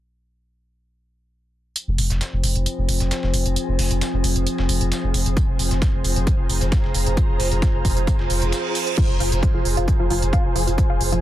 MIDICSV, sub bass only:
0, 0, Header, 1, 2, 480
1, 0, Start_track
1, 0, Key_signature, -4, "minor"
1, 0, Tempo, 451128
1, 1872, Time_signature, 4, 2, 24, 8
1, 11928, End_track
2, 0, Start_track
2, 0, Title_t, "Sub bass"
2, 0, Program_c, 0, 38
2, 1997, Note_on_c, 0, 29, 76
2, 2107, Note_off_c, 0, 29, 0
2, 2113, Note_on_c, 0, 29, 100
2, 2232, Note_off_c, 0, 29, 0
2, 2238, Note_on_c, 0, 29, 81
2, 2350, Note_off_c, 0, 29, 0
2, 2477, Note_on_c, 0, 29, 76
2, 2586, Note_off_c, 0, 29, 0
2, 2593, Note_on_c, 0, 29, 97
2, 2712, Note_off_c, 0, 29, 0
2, 2718, Note_on_c, 0, 29, 79
2, 2830, Note_off_c, 0, 29, 0
2, 2958, Note_on_c, 0, 29, 77
2, 3066, Note_off_c, 0, 29, 0
2, 3072, Note_on_c, 0, 29, 96
2, 3192, Note_off_c, 0, 29, 0
2, 3199, Note_on_c, 0, 29, 81
2, 3310, Note_off_c, 0, 29, 0
2, 3436, Note_on_c, 0, 29, 73
2, 3546, Note_off_c, 0, 29, 0
2, 3552, Note_on_c, 0, 29, 95
2, 3671, Note_off_c, 0, 29, 0
2, 3677, Note_on_c, 0, 29, 81
2, 3789, Note_off_c, 0, 29, 0
2, 3917, Note_on_c, 0, 29, 75
2, 4025, Note_off_c, 0, 29, 0
2, 4031, Note_on_c, 0, 29, 99
2, 4151, Note_off_c, 0, 29, 0
2, 4157, Note_on_c, 0, 29, 79
2, 4269, Note_off_c, 0, 29, 0
2, 4397, Note_on_c, 0, 29, 73
2, 4504, Note_off_c, 0, 29, 0
2, 4510, Note_on_c, 0, 29, 95
2, 4630, Note_off_c, 0, 29, 0
2, 4636, Note_on_c, 0, 29, 80
2, 4749, Note_off_c, 0, 29, 0
2, 4878, Note_on_c, 0, 29, 76
2, 4985, Note_off_c, 0, 29, 0
2, 4991, Note_on_c, 0, 29, 92
2, 5111, Note_off_c, 0, 29, 0
2, 5118, Note_on_c, 0, 29, 80
2, 5230, Note_off_c, 0, 29, 0
2, 5357, Note_on_c, 0, 29, 76
2, 5465, Note_off_c, 0, 29, 0
2, 5472, Note_on_c, 0, 29, 95
2, 5591, Note_off_c, 0, 29, 0
2, 5597, Note_on_c, 0, 29, 79
2, 5709, Note_off_c, 0, 29, 0
2, 5836, Note_on_c, 0, 29, 76
2, 5945, Note_off_c, 0, 29, 0
2, 5951, Note_on_c, 0, 29, 99
2, 6071, Note_off_c, 0, 29, 0
2, 6077, Note_on_c, 0, 29, 80
2, 6189, Note_off_c, 0, 29, 0
2, 6317, Note_on_c, 0, 29, 75
2, 6425, Note_off_c, 0, 29, 0
2, 6431, Note_on_c, 0, 29, 99
2, 6550, Note_off_c, 0, 29, 0
2, 6557, Note_on_c, 0, 29, 79
2, 6669, Note_off_c, 0, 29, 0
2, 6797, Note_on_c, 0, 29, 75
2, 6905, Note_off_c, 0, 29, 0
2, 6912, Note_on_c, 0, 29, 95
2, 7030, Note_off_c, 0, 29, 0
2, 7037, Note_on_c, 0, 29, 81
2, 7149, Note_off_c, 0, 29, 0
2, 7277, Note_on_c, 0, 29, 73
2, 7385, Note_off_c, 0, 29, 0
2, 7391, Note_on_c, 0, 29, 97
2, 7511, Note_off_c, 0, 29, 0
2, 7518, Note_on_c, 0, 29, 82
2, 7630, Note_off_c, 0, 29, 0
2, 7758, Note_on_c, 0, 29, 75
2, 7864, Note_off_c, 0, 29, 0
2, 7871, Note_on_c, 0, 29, 102
2, 7989, Note_off_c, 0, 29, 0
2, 7996, Note_on_c, 0, 29, 79
2, 8109, Note_off_c, 0, 29, 0
2, 8237, Note_on_c, 0, 29, 75
2, 8344, Note_off_c, 0, 29, 0
2, 8350, Note_on_c, 0, 29, 97
2, 8469, Note_off_c, 0, 29, 0
2, 8475, Note_on_c, 0, 29, 80
2, 8588, Note_off_c, 0, 29, 0
2, 8716, Note_on_c, 0, 29, 76
2, 8825, Note_off_c, 0, 29, 0
2, 8831, Note_on_c, 0, 29, 97
2, 8949, Note_off_c, 0, 29, 0
2, 8956, Note_on_c, 0, 29, 82
2, 9068, Note_off_c, 0, 29, 0
2, 9677, Note_on_c, 0, 29, 76
2, 9785, Note_off_c, 0, 29, 0
2, 9792, Note_on_c, 0, 29, 101
2, 9911, Note_off_c, 0, 29, 0
2, 9917, Note_on_c, 0, 29, 82
2, 10029, Note_off_c, 0, 29, 0
2, 10158, Note_on_c, 0, 29, 77
2, 10265, Note_off_c, 0, 29, 0
2, 10272, Note_on_c, 0, 29, 100
2, 10391, Note_off_c, 0, 29, 0
2, 10398, Note_on_c, 0, 29, 80
2, 10509, Note_off_c, 0, 29, 0
2, 10638, Note_on_c, 0, 29, 77
2, 10746, Note_off_c, 0, 29, 0
2, 10752, Note_on_c, 0, 29, 98
2, 10870, Note_off_c, 0, 29, 0
2, 10877, Note_on_c, 0, 29, 79
2, 10989, Note_off_c, 0, 29, 0
2, 11118, Note_on_c, 0, 29, 74
2, 11226, Note_off_c, 0, 29, 0
2, 11232, Note_on_c, 0, 29, 98
2, 11352, Note_off_c, 0, 29, 0
2, 11358, Note_on_c, 0, 29, 78
2, 11470, Note_off_c, 0, 29, 0
2, 11597, Note_on_c, 0, 29, 76
2, 11705, Note_off_c, 0, 29, 0
2, 11711, Note_on_c, 0, 29, 104
2, 11831, Note_off_c, 0, 29, 0
2, 11838, Note_on_c, 0, 29, 81
2, 11928, Note_off_c, 0, 29, 0
2, 11928, End_track
0, 0, End_of_file